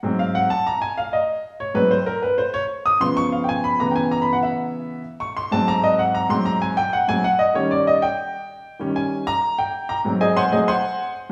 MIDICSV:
0, 0, Header, 1, 2, 480
1, 0, Start_track
1, 0, Tempo, 312989
1, 55, Time_signature, 4, 2, 24, 8
1, 17359, End_track
2, 0, Start_track
2, 0, Title_t, "Upright piano"
2, 0, Program_c, 0, 0
2, 46, Note_on_c, 0, 44, 56
2, 52, Note_on_c, 0, 54, 47
2, 62, Note_on_c, 0, 60, 64
2, 296, Note_on_c, 0, 77, 83
2, 529, Note_off_c, 0, 77, 0
2, 536, Note_on_c, 0, 78, 86
2, 735, Note_off_c, 0, 44, 0
2, 738, Note_off_c, 0, 54, 0
2, 743, Note_off_c, 0, 60, 0
2, 769, Note_off_c, 0, 78, 0
2, 770, Note_on_c, 0, 81, 86
2, 1006, Note_off_c, 0, 81, 0
2, 1021, Note_on_c, 0, 82, 88
2, 1251, Note_on_c, 0, 80, 85
2, 1252, Note_off_c, 0, 82, 0
2, 1486, Note_off_c, 0, 80, 0
2, 1496, Note_on_c, 0, 77, 81
2, 1729, Note_off_c, 0, 77, 0
2, 1733, Note_on_c, 0, 75, 68
2, 2181, Note_off_c, 0, 75, 0
2, 2456, Note_on_c, 0, 73, 79
2, 2675, Note_on_c, 0, 44, 53
2, 2678, Note_on_c, 0, 54, 51
2, 2684, Note_on_c, 0, 71, 91
2, 2689, Note_off_c, 0, 73, 0
2, 2690, Note_on_c, 0, 60, 58
2, 2923, Note_off_c, 0, 71, 0
2, 2928, Note_on_c, 0, 72, 86
2, 3004, Note_off_c, 0, 44, 0
2, 3006, Note_off_c, 0, 54, 0
2, 3012, Note_off_c, 0, 60, 0
2, 3164, Note_on_c, 0, 70, 87
2, 3165, Note_off_c, 0, 72, 0
2, 3403, Note_off_c, 0, 70, 0
2, 3411, Note_on_c, 0, 71, 79
2, 3647, Note_off_c, 0, 71, 0
2, 3649, Note_on_c, 0, 72, 83
2, 3886, Note_off_c, 0, 72, 0
2, 3891, Note_on_c, 0, 73, 99
2, 4037, Note_off_c, 0, 73, 0
2, 4379, Note_on_c, 0, 87, 89
2, 4605, Note_on_c, 0, 49, 52
2, 4612, Note_off_c, 0, 87, 0
2, 4616, Note_on_c, 0, 53, 52
2, 4616, Note_on_c, 0, 84, 101
2, 4623, Note_on_c, 0, 59, 58
2, 4850, Note_off_c, 0, 84, 0
2, 4857, Note_on_c, 0, 85, 106
2, 5091, Note_off_c, 0, 85, 0
2, 5096, Note_on_c, 0, 77, 64
2, 5275, Note_on_c, 0, 79, 61
2, 5311, Note_off_c, 0, 79, 0
2, 5330, Note_off_c, 0, 77, 0
2, 5348, Note_on_c, 0, 80, 91
2, 5577, Note_off_c, 0, 80, 0
2, 5582, Note_on_c, 0, 83, 81
2, 5752, Note_off_c, 0, 49, 0
2, 5758, Note_off_c, 0, 53, 0
2, 5762, Note_off_c, 0, 59, 0
2, 5813, Note_on_c, 0, 49, 52
2, 5814, Note_off_c, 0, 83, 0
2, 5821, Note_on_c, 0, 52, 48
2, 5828, Note_on_c, 0, 82, 78
2, 5834, Note_on_c, 0, 59, 60
2, 5997, Note_on_c, 0, 79, 52
2, 6032, Note_off_c, 0, 79, 0
2, 6057, Note_off_c, 0, 82, 0
2, 6067, Note_on_c, 0, 80, 85
2, 6296, Note_off_c, 0, 80, 0
2, 6310, Note_on_c, 0, 82, 86
2, 6460, Note_off_c, 0, 82, 0
2, 6467, Note_on_c, 0, 83, 77
2, 6619, Note_off_c, 0, 83, 0
2, 6638, Note_on_c, 0, 78, 74
2, 6785, Note_off_c, 0, 78, 0
2, 6789, Note_on_c, 0, 76, 79
2, 7677, Note_off_c, 0, 49, 0
2, 7681, Note_off_c, 0, 52, 0
2, 7685, Note_off_c, 0, 76, 0
2, 7687, Note_off_c, 0, 59, 0
2, 7978, Note_on_c, 0, 85, 86
2, 8213, Note_off_c, 0, 85, 0
2, 8228, Note_on_c, 0, 84, 88
2, 8458, Note_off_c, 0, 84, 0
2, 8458, Note_on_c, 0, 44, 60
2, 8465, Note_on_c, 0, 54, 46
2, 8468, Note_on_c, 0, 81, 99
2, 8472, Note_on_c, 0, 60, 64
2, 8698, Note_off_c, 0, 81, 0
2, 8710, Note_on_c, 0, 82, 102
2, 8939, Note_off_c, 0, 82, 0
2, 8950, Note_on_c, 0, 75, 83
2, 9179, Note_off_c, 0, 75, 0
2, 9187, Note_on_c, 0, 78, 78
2, 9418, Note_off_c, 0, 78, 0
2, 9424, Note_on_c, 0, 82, 89
2, 9626, Note_off_c, 0, 44, 0
2, 9634, Note_off_c, 0, 54, 0
2, 9642, Note_off_c, 0, 60, 0
2, 9649, Note_on_c, 0, 44, 59
2, 9656, Note_off_c, 0, 82, 0
2, 9657, Note_on_c, 0, 54, 51
2, 9665, Note_on_c, 0, 60, 65
2, 9665, Note_on_c, 0, 84, 96
2, 9897, Note_off_c, 0, 84, 0
2, 9900, Note_on_c, 0, 82, 93
2, 10134, Note_off_c, 0, 82, 0
2, 10147, Note_on_c, 0, 80, 90
2, 10340, Note_off_c, 0, 44, 0
2, 10344, Note_off_c, 0, 54, 0
2, 10348, Note_off_c, 0, 60, 0
2, 10378, Note_off_c, 0, 80, 0
2, 10383, Note_on_c, 0, 79, 97
2, 10616, Note_off_c, 0, 79, 0
2, 10628, Note_on_c, 0, 78, 86
2, 10858, Note_on_c, 0, 44, 47
2, 10859, Note_off_c, 0, 78, 0
2, 10868, Note_on_c, 0, 54, 44
2, 10868, Note_on_c, 0, 80, 103
2, 10873, Note_on_c, 0, 60, 49
2, 11076, Note_off_c, 0, 44, 0
2, 11082, Note_off_c, 0, 54, 0
2, 11085, Note_off_c, 0, 60, 0
2, 11098, Note_off_c, 0, 80, 0
2, 11108, Note_on_c, 0, 78, 88
2, 11331, Note_on_c, 0, 75, 82
2, 11339, Note_off_c, 0, 78, 0
2, 11567, Note_on_c, 0, 51, 53
2, 11570, Note_off_c, 0, 75, 0
2, 11574, Note_on_c, 0, 55, 50
2, 11585, Note_on_c, 0, 73, 86
2, 11586, Note_on_c, 0, 61, 61
2, 11817, Note_off_c, 0, 73, 0
2, 11822, Note_on_c, 0, 74, 82
2, 12055, Note_off_c, 0, 74, 0
2, 12073, Note_on_c, 0, 75, 83
2, 12258, Note_off_c, 0, 51, 0
2, 12262, Note_off_c, 0, 55, 0
2, 12268, Note_off_c, 0, 61, 0
2, 12301, Note_off_c, 0, 75, 0
2, 12304, Note_on_c, 0, 79, 88
2, 13441, Note_off_c, 0, 79, 0
2, 13487, Note_on_c, 0, 51, 51
2, 13497, Note_on_c, 0, 55, 48
2, 13509, Note_on_c, 0, 61, 65
2, 13739, Note_on_c, 0, 80, 77
2, 14177, Note_off_c, 0, 51, 0
2, 14182, Note_off_c, 0, 55, 0
2, 14186, Note_off_c, 0, 80, 0
2, 14188, Note_off_c, 0, 61, 0
2, 14216, Note_on_c, 0, 82, 115
2, 14664, Note_off_c, 0, 82, 0
2, 14699, Note_on_c, 0, 79, 82
2, 15145, Note_off_c, 0, 79, 0
2, 15169, Note_on_c, 0, 82, 91
2, 15316, Note_off_c, 0, 82, 0
2, 15408, Note_on_c, 0, 44, 53
2, 15416, Note_on_c, 0, 54, 56
2, 15424, Note_on_c, 0, 60, 55
2, 15655, Note_on_c, 0, 72, 57
2, 15655, Note_on_c, 0, 80, 90
2, 15659, Note_on_c, 0, 75, 69
2, 15660, Note_on_c, 0, 68, 62
2, 15879, Note_off_c, 0, 72, 0
2, 15882, Note_off_c, 0, 80, 0
2, 15891, Note_off_c, 0, 68, 0
2, 15891, Note_off_c, 0, 75, 0
2, 15897, Note_on_c, 0, 84, 107
2, 15902, Note_on_c, 0, 72, 84
2, 15904, Note_on_c, 0, 78, 76
2, 15905, Note_on_c, 0, 80, 90
2, 16105, Note_off_c, 0, 44, 0
2, 16109, Note_off_c, 0, 54, 0
2, 16112, Note_off_c, 0, 80, 0
2, 16119, Note_off_c, 0, 60, 0
2, 16124, Note_off_c, 0, 72, 0
2, 16128, Note_on_c, 0, 44, 47
2, 16129, Note_off_c, 0, 84, 0
2, 16132, Note_on_c, 0, 54, 45
2, 16133, Note_off_c, 0, 78, 0
2, 16135, Note_on_c, 0, 80, 73
2, 16142, Note_on_c, 0, 60, 52
2, 16142, Note_on_c, 0, 75, 60
2, 16144, Note_on_c, 0, 68, 65
2, 16147, Note_on_c, 0, 72, 61
2, 16348, Note_off_c, 0, 44, 0
2, 16350, Note_off_c, 0, 54, 0
2, 16355, Note_off_c, 0, 60, 0
2, 16355, Note_off_c, 0, 80, 0
2, 16358, Note_off_c, 0, 72, 0
2, 16372, Note_off_c, 0, 75, 0
2, 16373, Note_off_c, 0, 68, 0
2, 16378, Note_on_c, 0, 80, 78
2, 16379, Note_on_c, 0, 84, 104
2, 16381, Note_on_c, 0, 72, 79
2, 16383, Note_on_c, 0, 78, 79
2, 17046, Note_off_c, 0, 80, 0
2, 17046, Note_off_c, 0, 84, 0
2, 17047, Note_off_c, 0, 72, 0
2, 17048, Note_off_c, 0, 78, 0
2, 17359, End_track
0, 0, End_of_file